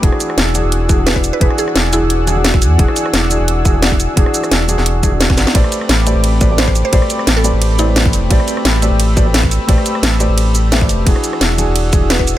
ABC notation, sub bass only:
X:1
M:4/4
L:1/16
Q:"Swing 16ths" 1/4=174
K:Em
V:1 name="Sub bass" clef=bass
E,,, z3 E,,,3 E,,,8 z | E,,, z3 E,,,3 E,,,6- E,,, E,,2 | E,,, z3 E,,,3 E,,,8 z | E,,, z3 E,,,3 E,,,3 E,,,4 ^G,,, z |
A,,, z3 A,,,3 A,,,8 z | A,,, z3 A,,,3 A,,,6- A,,, E,,,2 | A,,, z3 A,,,3 A,,,8 z | A,,, z3 A,,,3 A,,,6- A,,, E,,,2 |
E,,, z3 E,,,3 E,,,8 z |]